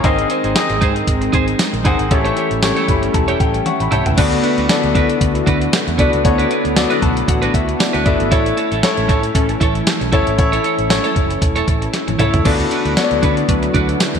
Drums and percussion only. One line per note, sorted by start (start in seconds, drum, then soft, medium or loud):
0.04 kick loud
0.04 closed hi-hat medium
0.19 closed hi-hat medium
0.30 closed hi-hat medium
0.44 closed hi-hat soft
0.56 snare loud
0.56 closed hi-hat medium
0.56 tambourine medium
0.70 closed hi-hat soft
0.82 kick medium
0.82 closed hi-hat medium
0.96 closed hi-hat medium
1.07 kick medium
1.07 closed hi-hat loud
1.22 closed hi-hat medium
1.33 kick medium
1.33 closed hi-hat medium
1.48 closed hi-hat soft
1.59 snare loud
1.59 closed hi-hat medium
1.59 tambourine medium
1.74 closed hi-hat soft
1.85 kick medium
1.85 closed hi-hat medium
1.99 closed hi-hat medium
2.11 kick loud
2.11 closed hi-hat medium
2.25 closed hi-hat medium
2.37 closed hi-hat medium
2.51 closed hi-hat medium
2.63 snare loud
2.63 closed hi-hat medium
2.63 tambourine medium
2.77 closed hi-hat soft
2.88 kick medium
2.88 closed hi-hat medium
3.03 closed hi-hat medium
3.14 kick medium
3.14 closed hi-hat loud
3.28 closed hi-hat medium
3.40 kick medium
3.40 closed hi-hat medium
3.54 closed hi-hat soft
3.66 closed hi-hat medium
3.66 high tom medium
3.80 closed hi-hat soft
3.92 closed hi-hat medium
3.92 mid tom medium
4.06 closed hi-hat medium
4.06 floor tom medium
4.18 kick loud
4.18 closed hi-hat medium
4.18 crash loud
4.32 closed hi-hat medium
4.44 closed hi-hat medium
4.58 closed hi-hat medium
4.69 snare loud
4.69 closed hi-hat medium
4.69 tambourine medium
4.83 closed hi-hat soft
4.95 kick medium
4.95 closed hi-hat medium
5.10 closed hi-hat medium
5.21 kick medium
5.21 closed hi-hat loud
5.35 closed hi-hat medium
5.47 kick medium
5.47 closed hi-hat medium
5.61 closed hi-hat medium
5.73 snare loud
5.73 closed hi-hat medium
5.73 tambourine medium
5.88 closed hi-hat soft
5.99 kick medium
5.99 closed hi-hat medium
6.13 closed hi-hat medium
6.25 kick loud
6.25 closed hi-hat medium
6.39 closed hi-hat medium
6.51 closed hi-hat medium
6.65 closed hi-hat soft
6.77 snare loud
6.77 closed hi-hat loud
6.77 tambourine medium
6.91 closed hi-hat soft
7.02 kick medium
7.02 closed hi-hat medium
7.17 closed hi-hat medium
7.28 kick medium
7.28 closed hi-hat loud
7.43 closed hi-hat medium
7.54 kick medium
7.54 closed hi-hat medium
7.69 closed hi-hat soft
7.80 snare loud
7.80 closed hi-hat medium
7.80 tambourine medium
7.94 closed hi-hat soft
8.06 kick loud
8.06 closed hi-hat medium
8.20 closed hi-hat medium
8.32 kick loud
8.32 closed hi-hat medium
8.46 closed hi-hat medium
8.57 closed hi-hat medium
8.72 closed hi-hat medium
8.83 snare loud
8.83 closed hi-hat medium
8.83 tambourine medium
8.97 closed hi-hat soft
9.09 kick medium
9.09 closed hi-hat medium
9.23 closed hi-hat medium
9.35 kick medium
9.35 closed hi-hat loud
9.49 closed hi-hat medium
9.61 kick medium
9.61 closed hi-hat medium
9.75 closed hi-hat soft
9.87 snare loud
9.87 closed hi-hat medium
9.87 tambourine medium
10.01 closed hi-hat soft
10.13 kick medium
10.13 closed hi-hat medium
10.27 closed hi-hat medium
10.38 kick loud
10.38 closed hi-hat medium
10.53 closed hi-hat medium
10.64 closed hi-hat medium
10.79 closed hi-hat medium
10.90 snare loud
10.90 closed hi-hat medium
10.90 tambourine medium
11.04 closed hi-hat soft
11.16 kick medium
11.16 closed hi-hat medium
11.30 closed hi-hat medium
11.42 kick medium
11.42 closed hi-hat loud
11.56 closed hi-hat medium
11.68 kick medium
11.68 closed hi-hat medium
11.82 closed hi-hat medium
11.94 snare medium
11.94 closed hi-hat medium
12.08 closed hi-hat soft
12.08 high tom medium
12.19 closed hi-hat medium
12.19 mid tom medium
12.34 closed hi-hat medium
12.34 floor tom loud
12.45 kick loud
12.45 crash medium
12.60 closed hi-hat medium
12.71 closed hi-hat medium
12.85 closed hi-hat soft
12.97 snare loud
12.97 closed hi-hat medium
12.97 tambourine medium
13.11 closed hi-hat soft
13.23 kick medium
13.23 closed hi-hat medium
13.37 closed hi-hat medium
13.49 kick medium
13.49 closed hi-hat loud
13.63 closed hi-hat medium
13.74 kick medium
13.74 closed hi-hat medium
13.89 closed hi-hat soft
14.00 snare loud
14.00 closed hi-hat medium
14.00 tambourine medium
14.15 closed hi-hat soft